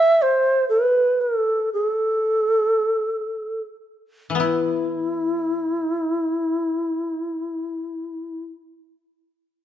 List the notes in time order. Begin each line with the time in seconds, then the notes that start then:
Already playing: E3 E5
0.22 C5
0.69 B4
1.21 A#4
1.38 A4
1.73 G#4
1.87 A4
4.30 E3
4.35 B3
4.40 E4